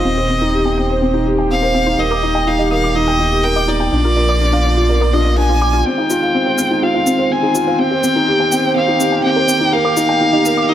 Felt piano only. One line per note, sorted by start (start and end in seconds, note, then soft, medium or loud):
0.05 0.17 C4 medium
0.17 0.24 C5 medium
0.29 0.41 C4 medium
0.41 0.53 D#4 medium
0.53 0.65 G4 medium
0.66 0.77 G5 medium
0.78 0.89 C4 medium
0.90 0.97 C5 medium
1.02 1.14 C4 medium
1.14 1.26 D#4 medium
1.26 1.38 G4 medium
1.38 1.50 G5 medium
1.50 1.62 C4 medium
1.62 1.69 C5 medium
1.75 1.86 C4 medium
1.87 1.98 D#4 medium
1.99 2.10 A#4 medium
2.11 2.22 D6 medium
2.23 2.34 D#4 medium
2.35 2.42 G5 medium
2.47 2.59 D#4 medium
2.59 2.71 G4 medium
2.71 2.83 A#4 medium
2.84 2.95 D6 medium
2.96 3.07 D#4 medium
3.08 3.15 G5 medium
3.20 3.31 D#4 medium
3.32 3.43 G4 medium
3.44 3.55 A#4 medium
3.56 3.68 D6 medium
3.68 3.80 D#4 medium
3.80 3.87 G5 medium
3.92 4.04 D4 medium
4.05 4.16 F4 medium
4.17 4.28 A#4 medium
4.29 4.40 D6 medium
4.41 4.52 D4 medium
4.53 4.60 F5 medium
4.65 4.76 D4 medium
4.77 4.89 F4 medium
4.89 5.01 A#4 medium
5.01 5.13 D6 medium
5.13 5.20 F4 medium
5.26 5.37 A#4 medium
5.37 5.48 D4 medium
5.50 5.57 D4 medium
5.62 5.73 D6 medium
5.74 5.85 F4 medium
5.86 5.98 C4 medium
5.98 6.10 D#4 medium
6.10 6.22 F4 medium
6.23 6.34 F5 medium
6.34 6.46 C4 medium
6.46 6.53 C5 medium
6.58 6.70 C4 medium
6.71 6.82 D#4 medium
6.83 6.94 F4 medium
6.95 7.06 F5 medium
7.07 7.18 C4 medium
7.19 7.26 C5 medium
7.31 7.42 C4 medium
7.43 7.54 D#4 medium
7.55 7.67 F4 medium
7.67 7.79 F5 medium
7.79 7.91 C4 medium
7.92 7.98 C5 medium
8.04 8.15 C4 medium
8.16 8.27 D#4 medium
8.28 8.39 G4 medium
8.40 8.52 G5 medium
8.52 8.64 C4 medium
8.64 8.71 C5 medium
8.76 8.88 C4 medium
8.88 9.00 D#4 medium
9.00 9.12 G4 medium
9.12 9.24 G5 medium
9.25 9.36 C4 medium
9.36 9.43 C5 loud
9.49 9.60 C4 medium
9.61 9.72 D#4 medium
9.73 9.84 A#4 medium
9.85 9.96 D6 medium
9.97 10.08 D#4 medium
10.09 10.16 G5 medium
10.21 10.33 D#4 medium
10.33 10.45 G4 medium
10.45 10.57 A#4 medium
10.57 10.69 D6 medium
10.69 10.74 D#4 medium